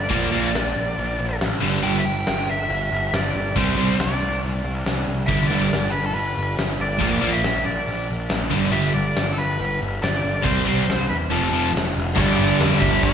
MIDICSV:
0, 0, Header, 1, 6, 480
1, 0, Start_track
1, 0, Tempo, 430725
1, 108, Time_signature, 4, 2, 24, 8
1, 14638, End_track
2, 0, Start_track
2, 0, Title_t, "Lead electric guitar"
2, 0, Program_c, 0, 29
2, 120, Note_on_c, 0, 74, 79
2, 1515, Note_off_c, 0, 74, 0
2, 2042, Note_on_c, 0, 79, 98
2, 2197, Note_on_c, 0, 76, 73
2, 2206, Note_off_c, 0, 79, 0
2, 2276, Note_off_c, 0, 76, 0
2, 2288, Note_on_c, 0, 79, 87
2, 2778, Note_off_c, 0, 79, 0
2, 2785, Note_on_c, 0, 76, 98
2, 3512, Note_off_c, 0, 76, 0
2, 3516, Note_on_c, 0, 74, 83
2, 3946, Note_off_c, 0, 74, 0
2, 3988, Note_on_c, 0, 72, 90
2, 4459, Note_on_c, 0, 74, 77
2, 4469, Note_off_c, 0, 72, 0
2, 4898, Note_off_c, 0, 74, 0
2, 5865, Note_on_c, 0, 76, 103
2, 6093, Note_off_c, 0, 76, 0
2, 6098, Note_on_c, 0, 74, 83
2, 6556, Note_off_c, 0, 74, 0
2, 6591, Note_on_c, 0, 71, 76
2, 6745, Note_off_c, 0, 71, 0
2, 6750, Note_on_c, 0, 69, 49
2, 6835, Note_off_c, 0, 69, 0
2, 6850, Note_on_c, 0, 71, 86
2, 7293, Note_off_c, 0, 71, 0
2, 7591, Note_on_c, 0, 74, 93
2, 8135, Note_off_c, 0, 74, 0
2, 8169, Note_on_c, 0, 76, 95
2, 8500, Note_off_c, 0, 76, 0
2, 8529, Note_on_c, 0, 74, 82
2, 8972, Note_off_c, 0, 74, 0
2, 9716, Note_on_c, 0, 76, 105
2, 9963, Note_off_c, 0, 76, 0
2, 9968, Note_on_c, 0, 74, 76
2, 10377, Note_off_c, 0, 74, 0
2, 10389, Note_on_c, 0, 69, 59
2, 10453, Note_off_c, 0, 69, 0
2, 10464, Note_on_c, 0, 71, 75
2, 10898, Note_off_c, 0, 71, 0
2, 11178, Note_on_c, 0, 74, 98
2, 11632, Note_on_c, 0, 72, 91
2, 11661, Note_off_c, 0, 74, 0
2, 12308, Note_off_c, 0, 72, 0
2, 12361, Note_on_c, 0, 71, 78
2, 12425, Note_off_c, 0, 71, 0
2, 12613, Note_on_c, 0, 69, 78
2, 13050, Note_off_c, 0, 69, 0
2, 13566, Note_on_c, 0, 74, 104
2, 14004, Note_off_c, 0, 74, 0
2, 14268, Note_on_c, 0, 76, 104
2, 14491, Note_off_c, 0, 76, 0
2, 14528, Note_on_c, 0, 74, 111
2, 14638, Note_off_c, 0, 74, 0
2, 14638, End_track
3, 0, Start_track
3, 0, Title_t, "Tonewheel organ"
3, 0, Program_c, 1, 16
3, 13536, Note_on_c, 1, 69, 71
3, 13547, Note_on_c, 1, 55, 59
3, 13550, Note_on_c, 1, 62, 61
3, 14638, Note_off_c, 1, 55, 0
3, 14638, Note_off_c, 1, 62, 0
3, 14638, Note_off_c, 1, 69, 0
3, 14638, End_track
4, 0, Start_track
4, 0, Title_t, "Overdriven electric guitar"
4, 0, Program_c, 2, 29
4, 111, Note_on_c, 2, 46, 87
4, 118, Note_on_c, 2, 53, 104
4, 124, Note_on_c, 2, 58, 104
4, 303, Note_off_c, 2, 46, 0
4, 306, Note_off_c, 2, 53, 0
4, 309, Note_off_c, 2, 58, 0
4, 348, Note_on_c, 2, 46, 84
4, 348, Note_on_c, 2, 53, 94
4, 358, Note_on_c, 2, 58, 89
4, 541, Note_off_c, 2, 53, 0
4, 542, Note_off_c, 2, 46, 0
4, 547, Note_off_c, 2, 58, 0
4, 1796, Note_on_c, 2, 43, 90
4, 1798, Note_on_c, 2, 50, 89
4, 1806, Note_on_c, 2, 55, 97
4, 1988, Note_off_c, 2, 43, 0
4, 1989, Note_off_c, 2, 50, 0
4, 1993, Note_off_c, 2, 55, 0
4, 2030, Note_on_c, 2, 43, 96
4, 2034, Note_on_c, 2, 50, 92
4, 2040, Note_on_c, 2, 55, 106
4, 2225, Note_off_c, 2, 43, 0
4, 2227, Note_off_c, 2, 50, 0
4, 2230, Note_off_c, 2, 55, 0
4, 3965, Note_on_c, 2, 48, 95
4, 3968, Note_on_c, 2, 55, 104
4, 3973, Note_on_c, 2, 60, 109
4, 4155, Note_off_c, 2, 48, 0
4, 4156, Note_off_c, 2, 55, 0
4, 4159, Note_off_c, 2, 60, 0
4, 4200, Note_on_c, 2, 48, 90
4, 4205, Note_on_c, 2, 55, 104
4, 4208, Note_on_c, 2, 60, 104
4, 4392, Note_off_c, 2, 48, 0
4, 4395, Note_off_c, 2, 55, 0
4, 4396, Note_off_c, 2, 60, 0
4, 5882, Note_on_c, 2, 43, 81
4, 5887, Note_on_c, 2, 50, 102
4, 5891, Note_on_c, 2, 55, 107
4, 6074, Note_off_c, 2, 43, 0
4, 6077, Note_off_c, 2, 50, 0
4, 6079, Note_off_c, 2, 55, 0
4, 6130, Note_on_c, 2, 43, 86
4, 6132, Note_on_c, 2, 50, 92
4, 6140, Note_on_c, 2, 55, 103
4, 6318, Note_off_c, 2, 43, 0
4, 6319, Note_off_c, 2, 50, 0
4, 6323, Note_off_c, 2, 55, 0
4, 7783, Note_on_c, 2, 46, 81
4, 7794, Note_on_c, 2, 53, 89
4, 7797, Note_on_c, 2, 58, 91
4, 7984, Note_off_c, 2, 46, 0
4, 7990, Note_off_c, 2, 53, 0
4, 7991, Note_off_c, 2, 58, 0
4, 8030, Note_on_c, 2, 46, 81
4, 8037, Note_on_c, 2, 53, 95
4, 8043, Note_on_c, 2, 58, 102
4, 8228, Note_off_c, 2, 46, 0
4, 8232, Note_off_c, 2, 53, 0
4, 8234, Note_off_c, 2, 58, 0
4, 9470, Note_on_c, 2, 43, 83
4, 9472, Note_on_c, 2, 50, 85
4, 9482, Note_on_c, 2, 55, 90
4, 9667, Note_off_c, 2, 43, 0
4, 9668, Note_off_c, 2, 50, 0
4, 9673, Note_off_c, 2, 55, 0
4, 9721, Note_on_c, 2, 43, 87
4, 9723, Note_on_c, 2, 50, 100
4, 9724, Note_on_c, 2, 55, 108
4, 9912, Note_off_c, 2, 43, 0
4, 9913, Note_off_c, 2, 50, 0
4, 9914, Note_off_c, 2, 55, 0
4, 11636, Note_on_c, 2, 48, 88
4, 11645, Note_on_c, 2, 55, 92
4, 11645, Note_on_c, 2, 60, 115
4, 11828, Note_off_c, 2, 48, 0
4, 11833, Note_off_c, 2, 55, 0
4, 11833, Note_off_c, 2, 60, 0
4, 11872, Note_on_c, 2, 48, 78
4, 11881, Note_on_c, 2, 55, 89
4, 11888, Note_on_c, 2, 60, 92
4, 12066, Note_off_c, 2, 48, 0
4, 12070, Note_off_c, 2, 55, 0
4, 12074, Note_off_c, 2, 60, 0
4, 12591, Note_on_c, 2, 41, 86
4, 12595, Note_on_c, 2, 48, 96
4, 12601, Note_on_c, 2, 53, 88
4, 12785, Note_off_c, 2, 41, 0
4, 12786, Note_off_c, 2, 48, 0
4, 12789, Note_off_c, 2, 53, 0
4, 12831, Note_on_c, 2, 41, 85
4, 12842, Note_on_c, 2, 48, 83
4, 12847, Note_on_c, 2, 53, 92
4, 13024, Note_off_c, 2, 41, 0
4, 13030, Note_off_c, 2, 48, 0
4, 13032, Note_off_c, 2, 53, 0
4, 13559, Note_on_c, 2, 43, 103
4, 13566, Note_on_c, 2, 50, 103
4, 13585, Note_on_c, 2, 55, 112
4, 14262, Note_off_c, 2, 50, 0
4, 14266, Note_off_c, 2, 55, 0
4, 14271, Note_on_c, 2, 55, 76
4, 14284, Note_on_c, 2, 50, 74
4, 14298, Note_off_c, 2, 43, 0
4, 14303, Note_on_c, 2, 43, 67
4, 14638, Note_off_c, 2, 43, 0
4, 14638, Note_off_c, 2, 50, 0
4, 14638, Note_off_c, 2, 55, 0
4, 14638, End_track
5, 0, Start_track
5, 0, Title_t, "Picked electric bass"
5, 0, Program_c, 3, 34
5, 0, Note_on_c, 3, 31, 89
5, 114, Note_off_c, 3, 31, 0
5, 126, Note_on_c, 3, 34, 92
5, 351, Note_off_c, 3, 34, 0
5, 378, Note_on_c, 3, 34, 89
5, 598, Note_off_c, 3, 34, 0
5, 610, Note_on_c, 3, 34, 73
5, 834, Note_off_c, 3, 34, 0
5, 849, Note_on_c, 3, 34, 86
5, 1074, Note_off_c, 3, 34, 0
5, 1096, Note_on_c, 3, 34, 93
5, 1318, Note_off_c, 3, 34, 0
5, 1329, Note_on_c, 3, 34, 82
5, 1555, Note_off_c, 3, 34, 0
5, 1576, Note_on_c, 3, 33, 83
5, 1799, Note_off_c, 3, 33, 0
5, 1813, Note_on_c, 3, 31, 92
5, 2038, Note_off_c, 3, 31, 0
5, 2059, Note_on_c, 3, 31, 82
5, 2281, Note_off_c, 3, 31, 0
5, 2300, Note_on_c, 3, 31, 85
5, 2522, Note_off_c, 3, 31, 0
5, 2543, Note_on_c, 3, 31, 81
5, 2997, Note_off_c, 3, 31, 0
5, 3003, Note_on_c, 3, 31, 95
5, 3234, Note_off_c, 3, 31, 0
5, 3250, Note_on_c, 3, 31, 83
5, 3478, Note_off_c, 3, 31, 0
5, 3487, Note_on_c, 3, 31, 85
5, 3716, Note_off_c, 3, 31, 0
5, 3729, Note_on_c, 3, 31, 88
5, 3957, Note_off_c, 3, 31, 0
5, 3975, Note_on_c, 3, 36, 85
5, 4196, Note_off_c, 3, 36, 0
5, 4203, Note_on_c, 3, 36, 83
5, 4434, Note_off_c, 3, 36, 0
5, 4459, Note_on_c, 3, 36, 86
5, 4683, Note_off_c, 3, 36, 0
5, 4702, Note_on_c, 3, 36, 81
5, 4925, Note_off_c, 3, 36, 0
5, 4942, Note_on_c, 3, 36, 95
5, 5162, Note_off_c, 3, 36, 0
5, 5168, Note_on_c, 3, 36, 85
5, 5398, Note_off_c, 3, 36, 0
5, 5413, Note_on_c, 3, 36, 81
5, 5640, Note_off_c, 3, 36, 0
5, 5658, Note_on_c, 3, 36, 85
5, 5883, Note_off_c, 3, 36, 0
5, 5901, Note_on_c, 3, 31, 83
5, 6121, Note_off_c, 3, 31, 0
5, 6128, Note_on_c, 3, 31, 88
5, 6358, Note_off_c, 3, 31, 0
5, 6373, Note_on_c, 3, 31, 84
5, 6833, Note_off_c, 3, 31, 0
5, 6844, Note_on_c, 3, 31, 91
5, 7076, Note_off_c, 3, 31, 0
5, 7105, Note_on_c, 3, 31, 80
5, 7327, Note_off_c, 3, 31, 0
5, 7337, Note_on_c, 3, 31, 88
5, 7562, Note_off_c, 3, 31, 0
5, 7568, Note_on_c, 3, 31, 87
5, 7817, Note_off_c, 3, 31, 0
5, 7817, Note_on_c, 3, 34, 86
5, 8042, Note_off_c, 3, 34, 0
5, 8048, Note_on_c, 3, 34, 89
5, 8277, Note_off_c, 3, 34, 0
5, 8301, Note_on_c, 3, 34, 82
5, 8524, Note_off_c, 3, 34, 0
5, 8538, Note_on_c, 3, 34, 82
5, 8763, Note_off_c, 3, 34, 0
5, 8776, Note_on_c, 3, 34, 97
5, 9001, Note_off_c, 3, 34, 0
5, 9031, Note_on_c, 3, 34, 76
5, 9249, Note_off_c, 3, 34, 0
5, 9262, Note_on_c, 3, 34, 85
5, 9484, Note_off_c, 3, 34, 0
5, 9495, Note_on_c, 3, 31, 78
5, 9720, Note_off_c, 3, 31, 0
5, 9733, Note_on_c, 3, 31, 89
5, 9959, Note_off_c, 3, 31, 0
5, 9979, Note_on_c, 3, 31, 94
5, 10202, Note_off_c, 3, 31, 0
5, 10216, Note_on_c, 3, 31, 84
5, 10673, Note_off_c, 3, 31, 0
5, 10689, Note_on_c, 3, 31, 93
5, 10916, Note_off_c, 3, 31, 0
5, 10938, Note_on_c, 3, 31, 78
5, 11161, Note_off_c, 3, 31, 0
5, 11178, Note_on_c, 3, 31, 82
5, 11400, Note_off_c, 3, 31, 0
5, 11411, Note_on_c, 3, 31, 86
5, 11636, Note_off_c, 3, 31, 0
5, 11657, Note_on_c, 3, 36, 84
5, 11880, Note_off_c, 3, 36, 0
5, 11901, Note_on_c, 3, 36, 88
5, 12121, Note_off_c, 3, 36, 0
5, 12137, Note_on_c, 3, 36, 85
5, 12359, Note_off_c, 3, 36, 0
5, 12370, Note_on_c, 3, 40, 80
5, 12588, Note_off_c, 3, 40, 0
5, 12594, Note_on_c, 3, 29, 92
5, 12826, Note_off_c, 3, 29, 0
5, 12840, Note_on_c, 3, 29, 76
5, 13069, Note_off_c, 3, 29, 0
5, 13081, Note_on_c, 3, 29, 90
5, 13309, Note_off_c, 3, 29, 0
5, 13331, Note_on_c, 3, 29, 86
5, 13554, Note_off_c, 3, 29, 0
5, 13579, Note_on_c, 3, 31, 86
5, 13715, Note_off_c, 3, 31, 0
5, 13815, Note_on_c, 3, 31, 100
5, 13952, Note_off_c, 3, 31, 0
5, 14040, Note_on_c, 3, 41, 85
5, 14181, Note_off_c, 3, 41, 0
5, 14296, Note_on_c, 3, 31, 84
5, 14432, Note_off_c, 3, 31, 0
5, 14530, Note_on_c, 3, 31, 97
5, 14638, Note_off_c, 3, 31, 0
5, 14638, End_track
6, 0, Start_track
6, 0, Title_t, "Drums"
6, 111, Note_on_c, 9, 46, 59
6, 118, Note_on_c, 9, 36, 108
6, 222, Note_off_c, 9, 46, 0
6, 229, Note_off_c, 9, 36, 0
6, 605, Note_on_c, 9, 46, 61
6, 616, Note_on_c, 9, 38, 105
6, 716, Note_off_c, 9, 46, 0
6, 727, Note_off_c, 9, 38, 0
6, 1086, Note_on_c, 9, 46, 56
6, 1197, Note_off_c, 9, 46, 0
6, 1563, Note_on_c, 9, 46, 50
6, 1574, Note_on_c, 9, 38, 109
6, 1675, Note_off_c, 9, 46, 0
6, 1686, Note_off_c, 9, 38, 0
6, 2047, Note_on_c, 9, 46, 52
6, 2159, Note_off_c, 9, 46, 0
6, 2519, Note_on_c, 9, 46, 53
6, 2530, Note_on_c, 9, 38, 108
6, 2631, Note_off_c, 9, 46, 0
6, 2642, Note_off_c, 9, 38, 0
6, 3002, Note_on_c, 9, 46, 49
6, 3113, Note_off_c, 9, 46, 0
6, 3485, Note_on_c, 9, 46, 48
6, 3496, Note_on_c, 9, 38, 110
6, 3597, Note_off_c, 9, 46, 0
6, 3608, Note_off_c, 9, 38, 0
6, 3968, Note_on_c, 9, 46, 52
6, 3972, Note_on_c, 9, 36, 113
6, 4079, Note_off_c, 9, 46, 0
6, 4084, Note_off_c, 9, 36, 0
6, 4447, Note_on_c, 9, 46, 54
6, 4458, Note_on_c, 9, 38, 112
6, 4558, Note_off_c, 9, 46, 0
6, 4569, Note_off_c, 9, 38, 0
6, 4933, Note_on_c, 9, 46, 52
6, 5045, Note_off_c, 9, 46, 0
6, 5409, Note_on_c, 9, 46, 50
6, 5420, Note_on_c, 9, 38, 101
6, 5521, Note_off_c, 9, 46, 0
6, 5532, Note_off_c, 9, 38, 0
6, 5888, Note_on_c, 9, 46, 53
6, 5893, Note_on_c, 9, 36, 107
6, 6000, Note_off_c, 9, 46, 0
6, 6005, Note_off_c, 9, 36, 0
6, 6375, Note_on_c, 9, 46, 53
6, 6386, Note_on_c, 9, 38, 108
6, 6486, Note_off_c, 9, 46, 0
6, 6497, Note_off_c, 9, 38, 0
6, 6860, Note_on_c, 9, 46, 52
6, 6972, Note_off_c, 9, 46, 0
6, 7330, Note_on_c, 9, 46, 55
6, 7341, Note_on_c, 9, 38, 96
6, 7441, Note_off_c, 9, 46, 0
6, 7452, Note_off_c, 9, 38, 0
6, 7807, Note_on_c, 9, 46, 54
6, 7812, Note_on_c, 9, 36, 112
6, 7918, Note_off_c, 9, 46, 0
6, 7923, Note_off_c, 9, 36, 0
6, 8285, Note_on_c, 9, 46, 59
6, 8296, Note_on_c, 9, 38, 100
6, 8396, Note_off_c, 9, 46, 0
6, 8407, Note_off_c, 9, 38, 0
6, 8776, Note_on_c, 9, 46, 54
6, 8888, Note_off_c, 9, 46, 0
6, 9238, Note_on_c, 9, 46, 57
6, 9249, Note_on_c, 9, 38, 109
6, 9349, Note_off_c, 9, 46, 0
6, 9360, Note_off_c, 9, 38, 0
6, 9727, Note_on_c, 9, 46, 58
6, 9838, Note_off_c, 9, 46, 0
6, 10204, Note_on_c, 9, 46, 56
6, 10215, Note_on_c, 9, 38, 118
6, 10316, Note_off_c, 9, 46, 0
6, 10327, Note_off_c, 9, 38, 0
6, 10684, Note_on_c, 9, 46, 50
6, 10796, Note_off_c, 9, 46, 0
6, 11175, Note_on_c, 9, 46, 47
6, 11186, Note_on_c, 9, 38, 97
6, 11286, Note_off_c, 9, 46, 0
6, 11297, Note_off_c, 9, 38, 0
6, 11650, Note_on_c, 9, 36, 112
6, 11653, Note_on_c, 9, 46, 55
6, 11761, Note_off_c, 9, 36, 0
6, 11765, Note_off_c, 9, 46, 0
6, 12134, Note_on_c, 9, 46, 52
6, 12146, Note_on_c, 9, 38, 105
6, 12246, Note_off_c, 9, 46, 0
6, 12257, Note_off_c, 9, 38, 0
6, 12621, Note_on_c, 9, 46, 51
6, 12732, Note_off_c, 9, 46, 0
6, 13108, Note_on_c, 9, 46, 55
6, 13119, Note_on_c, 9, 38, 99
6, 13219, Note_off_c, 9, 46, 0
6, 13231, Note_off_c, 9, 38, 0
6, 13571, Note_on_c, 9, 36, 107
6, 13574, Note_on_c, 9, 49, 127
6, 13683, Note_off_c, 9, 36, 0
6, 13686, Note_off_c, 9, 49, 0
6, 13809, Note_on_c, 9, 51, 79
6, 13921, Note_off_c, 9, 51, 0
6, 14039, Note_on_c, 9, 51, 104
6, 14050, Note_on_c, 9, 38, 115
6, 14150, Note_off_c, 9, 51, 0
6, 14161, Note_off_c, 9, 38, 0
6, 14287, Note_on_c, 9, 36, 90
6, 14287, Note_on_c, 9, 51, 76
6, 14399, Note_off_c, 9, 36, 0
6, 14399, Note_off_c, 9, 51, 0
6, 14518, Note_on_c, 9, 51, 89
6, 14524, Note_on_c, 9, 36, 110
6, 14629, Note_off_c, 9, 51, 0
6, 14635, Note_off_c, 9, 36, 0
6, 14638, End_track
0, 0, End_of_file